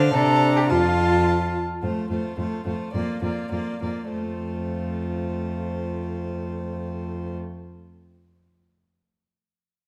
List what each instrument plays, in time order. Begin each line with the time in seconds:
Already playing: cello D3, viola D4, violin C5 F5
0.13 cello C3, viola D4, violin A4 A#5
0.56 violin G4
0.69 cello F2, violin F4 A5, viola F4
1.81 cello F2, viola A3, violin F4 C5
2.10 cello F2, viola A3, violin F4 C5
2.38 cello F2, viola A3, violin F4 C5
2.66 cello F2, viola A3, violin F4 C5
2.93 cello F2, viola A#3, violin F4 D5
3.22 cello F2, viola A#3, violin F4 D5
3.51 cello F2, viola A#3, violin F4 D5
3.82 cello F2, viola A#3, violin F4 D5
4.12 cello F2, viola A3, violin F4 C5